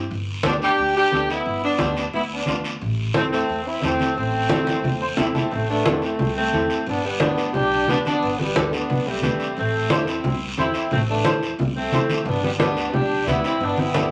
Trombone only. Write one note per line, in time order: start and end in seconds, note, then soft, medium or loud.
0.47 0.54 B3 medium
0.64 0.94 D4 medium
0.97 1.28 D4 medium
1.31 1.62 B3 medium
1.64 1.95 B3 medium
1.98 2.06 B3 medium
2.14 2.22 B3 medium
2.31 2.63 B3 medium
3.15 3.23 A3 medium
3.33 3.68 A3 medium
3.66 3.85 C4 medium
3.83 4.17 A3 medium
4.17 5.15 A3 medium
5.20 5.27 C4 medium
5.37 5.55 C4 medium
5.54 5.70 A3 medium
5.70 6.03 A3 medium
6.03 6.37 A3 medium
6.38 6.90 A3 medium
6.88 7.08 B3 medium
7.06 7.22 G3 medium
7.22 7.57 B3 medium
7.56 7.89 D4 medium
7.89 7.97 B3 medium
8.06 8.42 B3 medium
8.40 8.75 G3 medium
8.74 9.09 B3 medium
9.07 9.56 G3 medium
9.57 9.91 A3 medium
9.91 10.10 A3 medium
10.08 10.42 C4 medium
10.59 10.74 C4 medium
10.76 10.91 C4 medium
10.92 11.00 A3 medium
11.10 11.40 A3 medium
11.76 12.28 A3 medium
12.26 12.43 B3 medium
12.44 12.51 G3 medium
12.59 12.94 B3 medium
12.93 13.27 D4 medium
13.27 13.43 B3 medium
13.45 13.64 C4 medium
13.62 13.79 B3 medium
13.79 14.11 B3 medium